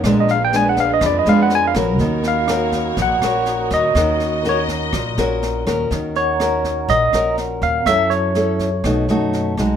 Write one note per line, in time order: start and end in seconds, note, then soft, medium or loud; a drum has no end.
0.04 0.98 A#1 loud
0.04 1.00 A#2 medium
0.04 0.36 G#3 medium
0.04 0.37 B3 medium
0.04 1.98 D4 medium
0.04 0.37 D4 medium
0.04 1.98 G#4 medium
0.04 5.87 A#4 medium
0.04 1.98 B4 medium
0.04 kick medium
0.04 cross-stick medium
0.04 snare soft
0.20 0.30 D#5 medium
0.28 0.42 F5 medium
0.28 snare soft
0.45 0.55 G5 medium
0.53 1.23 G#3 soft
0.53 1.23 B3 medium
0.53 1.23 D4 medium
0.53 0.67 G#5 medium
0.53 snare soft
0.69 0.79 F#5 medium
0.77 0.91 F5 medium
0.77 kick soft
0.77 snare soft
0.93 1.04 D#5 medium
1.01 1.24 F2 loud
1.01 1.98 F3 medium
1.01 2.21 B5 medium
1.01 kick medium
1.01 cross-stick medium
1.01 snare soft
1.06 1.16 D5 medium
1.19 1.29 D#5 medium
1.26 1.72 F2 medium
1.26 1.72 G#3 medium
1.26 1.72 B3 medium
1.26 1.72 D4 medium
1.26 1.40 F5 medium
1.26 snare soft
1.43 1.53 F#5 medium
1.50 snare soft
1.55 1.65 G#5 loud
1.67 1.74 F5 medium
1.75 1.99 A#1 loud
1.75 2.45 C#4 medium
1.75 2.45 F#4 medium
1.75 2.45 A#4 medium
1.75 kick soft
1.75 cross-stick medium
1.75 snare soft
1.99 2.93 D#2 medium
1.99 2.95 D#3 medium
1.99 5.87 D#4 medium
1.99 5.87 F#4 medium
1.99 3.93 C#5 medium
1.99 kick medium
1.99 snare soft
2.23 snare soft
2.28 2.95 F5 medium
2.48 2.98 C#4 medium
2.48 2.98 F#4 medium
2.48 2.98 A#4 medium
2.48 cross-stick medium
2.48 snare soft
2.72 kick soft
2.72 snare soft
2.97 3.20 A#1 loud
2.97 3.93 A#2 medium
2.97 kick medium
2.97 snare soft
3.02 3.69 F#5 medium
3.22 3.68 A#1 medium
3.22 3.92 C#4 medium
3.22 3.92 F#4 medium
3.22 3.92 A#4 medium
3.22 4.86 C#6 soft
3.22 cross-stick medium
3.22 snare soft
3.46 snare soft
3.70 3.94 D#2 loud
3.70 4.42 D#5 medium
3.70 kick soft
3.70 snare soft
3.95 4.89 D#2 loud
3.95 4.91 D#3 medium
3.95 4.41 C#4 medium
3.95 4.41 F#4 medium
3.95 4.41 A#4 medium
3.95 5.89 D#5 medium
3.95 kick medium
3.95 cross-stick medium
3.95 snare soft
4.20 snare soft
4.45 4.93 C#4 medium
4.45 4.94 F#4 medium
4.45 4.94 A#4 medium
4.45 snare soft
4.49 4.62 C#5 medium
4.68 kick soft
4.68 snare soft
4.93 5.16 A#1 loud
4.93 5.89 A#2 medium
4.93 kick medium
4.93 cross-stick medium
4.93 snare soft
5.17 5.63 A#1 medium
5.17 5.63 C#4 medium
5.17 5.63 F#4 medium
5.17 5.63 A#4 medium
5.17 snare soft
5.43 snare soft
5.67 5.89 D#2 loud
5.67 6.36 C#4 medium
5.67 6.36 F#4 medium
5.67 6.36 A#4 medium
5.67 kick soft
5.67 cross-stick medium
5.67 snare soft
5.91 6.85 D#2 medium
5.91 6.87 D#3 medium
5.91 kick medium
5.91 snare soft
6.15 6.92 C#5 medium
6.15 7.80 F#5 soft
6.15 snare soft
6.33 7.94 A#5 soft
6.40 7.10 C#4 medium
6.40 7.10 F#4 soft
6.40 7.10 A#4 medium
6.40 cross-stick medium
6.40 snare soft
6.64 kick soft
6.64 snare soft
6.88 7.12 A#1 loud
6.88 7.84 A#2 soft
6.88 7.35 D#5 loud
6.88 kick medium
6.88 snare soft
7.13 7.59 A#1 medium
7.13 7.83 C#4 medium
7.13 7.83 F#4 medium
7.13 7.83 A#4 medium
7.13 cross-stick medium
7.13 snare soft
7.38 snare soft
7.62 7.86 D#2 medium
7.62 7.88 F5 medium
7.62 kick soft
7.62 snare soft
7.86 8.80 F#2 medium
7.86 8.82 F#3 medium
7.86 8.32 C#4 medium
7.86 8.32 E4 soft
7.86 8.32 A4 medium
7.86 8.12 E5 loud
7.86 kick medium
7.86 cross-stick medium
7.86 snare soft
8.10 9.53 C#5 medium
8.10 snare soft
8.35 8.68 C#4 medium
8.35 8.69 E4 soft
8.35 8.69 A4 medium
8.35 snare soft
8.59 kick soft
8.59 snare soft
8.84 9.07 B1 loud
8.84 9.77 B2 medium
8.84 9.05 A3 soft
8.84 9.06 D#4 medium
8.84 9.06 F#4 medium
8.84 kick medium
8.84 cross-stick medium
8.84 snare soft
9.08 9.54 F#2 medium
9.08 9.54 A3 medium
9.08 9.55 D#4 medium
9.08 9.55 F#4 medium
9.08 9.77 A5 soft
9.08 snare soft
9.33 snare soft
9.57 9.77 B1 medium
9.57 9.77 G#3 medium
9.57 9.77 D#4 medium
9.57 9.77 F#4 medium
9.57 kick soft
9.57 cross-stick medium
9.57 snare soft